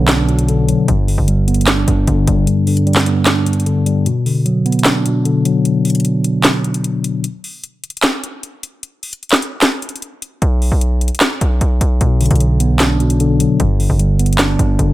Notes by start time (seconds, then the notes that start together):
Already playing: B1 B2 D3 F#3 B3 D4
0.08 D4, snare, clap, closed hi-hat
0.29 B2, closed hi-hat
0.39 closed hi-hat
0.48 D3, closed hi-hat
0.68 F#3, closed hi-hat
0.88 G1 G2, closed hi-hat
1.08 D3, open hi-hat
1.18 G1
1.28 G3, closed hi-hat
1.48 B3, closed hi-hat
1.54 closed hi-hat
1.61 closed hi-hat
1.67 D4, snare, clap, closed hi-hat
1.88 G1 G2, closed hi-hat
2.07 G1 D3, closed hi-hat
2.27 G1 G3, closed hi-hat
2.47 G2, closed hi-hat
2.67 D3, closed hi-hat, open hi-hat
2.77 closed hi-hat
2.87 G3, closed hi-hat
2.93 snare, clap, closed hi-hat
3.00 closed hi-hat
3.06 B3, closed hi-hat
3.26 D4, snare, clap, closed hi-hat
3.46 G2, closed hi-hat
3.53 closed hi-hat
3.60 closed hi-hat
3.66 D3, closed hi-hat
3.86 G3, closed hi-hat
4.06 B2, closed hi-hat
4.26 D3, open hi-hat
4.46 F#3, closed hi-hat
4.66 B3, closed hi-hat
4.72 closed hi-hat
4.79 closed hi-hat
4.85 D4, snare, clap, closed hi-hat
5.05 B2, closed hi-hat
5.25 D3, closed hi-hat
5.45 F#3, closed hi-hat
5.65 closed hi-hat
5.85 closed hi-hat, open hi-hat
5.90 closed hi-hat
5.95 closed hi-hat
6.00 closed hi-hat
6.05 closed hi-hat
6.24 closed hi-hat
6.44 snare, clap, closed hi-hat
6.64 closed hi-hat
6.74 closed hi-hat
6.84 closed hi-hat
7.04 closed hi-hat
7.24 closed hi-hat
7.44 open hi-hat
7.64 closed hi-hat
7.84 closed hi-hat
7.90 closed hi-hat
7.97 closed hi-hat
8.03 snare, clap, closed hi-hat
8.24 closed hi-hat
8.43 closed hi-hat
8.63 closed hi-hat
8.83 closed hi-hat
9.03 closed hi-hat, open hi-hat
9.13 closed hi-hat
9.23 closed hi-hat
9.29 snare, clap, closed hi-hat
9.36 closed hi-hat
9.42 closed hi-hat
9.62 snare, clap, closed hi-hat
9.82 closed hi-hat
9.89 closed hi-hat
9.96 closed hi-hat
10.02 closed hi-hat
10.22 closed hi-hat
10.42 B1, closed hi-hat
10.62 open hi-hat
10.72 B1
10.81 closed hi-hat
11.01 closed hi-hat
11.08 closed hi-hat
11.15 closed hi-hat
11.20 snare, clap, closed hi-hat
11.41 B1, closed hi-hat
11.61 B1, closed hi-hat
11.81 B1, closed hi-hat
12.01 B1 B2, closed hi-hat
12.21 D3, closed hi-hat, open hi-hat
12.26 closed hi-hat
12.31 B1, closed hi-hat
12.36 closed hi-hat
12.40 F#3, closed hi-hat
12.60 B3, closed hi-hat
12.79 D4, snare, clap, closed hi-hat
13.00 B2, closed hi-hat
13.10 closed hi-hat
13.20 D3, closed hi-hat
13.40 F#3, closed hi-hat
13.60 G1 G2, closed hi-hat
13.80 D3, open hi-hat
13.90 G1
13.99 G3, closed hi-hat
14.19 B3, closed hi-hat
14.26 closed hi-hat
14.33 closed hi-hat
14.38 D4, snare, clap, closed hi-hat
14.59 G1 G2, closed hi-hat
14.79 G1 D3, closed hi-hat